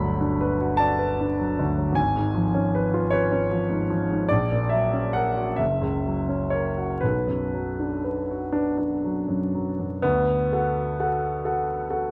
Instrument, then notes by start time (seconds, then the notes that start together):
grand piano
Already playing: G1 D2 B5
0.00 F#3
0.21 D4
0.41 B4
0.61 F#4
0.77 D5 A5
0.99 B4
1.21 D4
1.39 F#3
1.59 D2
1.78 F#3
1.92 G#1 G#5
2.16 G#2
2.34 F3
2.54 C#4
2.75 B4
2.94 F4
3.10 B4 C#5
3.32 C#4
3.51 F3
3.70 G#2
3.90 F3
4.11 G#2
4.29 A#1 D5
4.52 A#2
4.69 F#3 E5
4.93 C#4
5.13 A#4 F#5
5.37 F#4
5.56 F#1 E5
5.81 C#2
6.05 F#3
6.29 C#4
6.50 A#4 C#5
6.78 F#4
7.01 B1 B4
7.27 F#2
7.54 F#3
7.80 D4
8.04 B4
8.31 F#4
8.52 D4 B4
8.78 D4
9.04 F#3
9.28 F#2
9.54 F#3
9.79 F#2
10.02 D2 B3
10.53 F#4 A4 F#5
10.99 F#4 A4 F#5
11.45 F#4 A4 F#5
11.90 F#4 A4 F#5